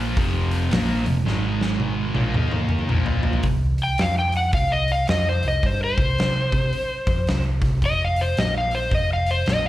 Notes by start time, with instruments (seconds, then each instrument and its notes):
Already playing: picked electric bass A#1, distorted electric guitar A#2 F3 A#3
0.17 picked electric bass F1, distorted electric guitar F2 C3 F3, kick, open hi-hat
0.51 open hi-hat
0.71 picked electric bass A#1, distorted electric guitar A#2 F3 A#3, snare, open hi-hat
1.05 picked electric bass F1, distorted electric guitar F2 C3, open hi-hat
1.26 picked electric bass G#1, distorted electric guitar G#2 D#3 G#3, snare
1.61 snare
1.80 high tom
2.14 picked electric bass A#1, distorted electric guitar A#2 F3 A#3, high tom
2.34 picked electric bass D#2, distorted electric guitar D#3 A#3 D#4, mid tom
2.51 mid tom
2.69 mid tom
2.79 mid tom
2.89 picked electric bass A#1, distorted electric guitar A#2 F3 A#3, mid tom
3.06 floor tom
3.23 floor tom
3.33 floor tom
3.43 picked electric bass C2, kick, open hi-hat
3.78 open hi-hat
3.83 electric slide guitar G5
3.98 picked electric bass F2, electric slide guitar F5, snare, open hi-hat
4.19 electric slide guitar G5
4.32 open hi-hat
4.37 electric slide guitar F#5
4.53 picked electric bass C2, electric slide guitar F5, kick, open hi-hat
4.72 electric slide guitar D#5
4.88 electric slide guitar F5, open hi-hat
5.08 picked electric bass F2, electric slide guitar D#5, snare, open hi-hat
5.29 electric slide guitar C5
5.43 picked electric bass C2, open hi-hat
5.48 electric slide guitar D#5
5.63 picked electric bass G2, electric slide guitar C5, kick, open hi-hat
5.84 electric slide guitar C5
5.98 picked electric bass C2, kick, open hi-hat
6.19 picked electric bass C2, snare, open hi-hat
6.52 picked electric bass C3, kick, open hi-hat
6.73 muted picked electric bass stroke, open hi-hat
7.07 picked electric bass F2, kick, open hi-hat
7.27 picked electric bass C2, snare, open hi-hat
7.62 picked electric bass C2, kick, snare, open hi-hat
7.82 picked electric bass F1, electric slide guitar D#5, kick, open hi-hat
8.05 electric slide guitar F5
8.16 open hi-hat
8.21 electric slide guitar C5
8.37 picked electric bass A#1, electric slide guitar D#5, snare, open hi-hat
8.58 electric slide guitar F5
8.71 electric slide guitar C5, open hi-hat
8.91 picked electric bass F1, electric slide guitar D#5, kick, open hi-hat
9.13 electric slide guitar F5
9.26 open hi-hat
9.31 electric slide guitar C5
9.46 picked electric bass A#1, electric slide guitar D#5, snare, open hi-hat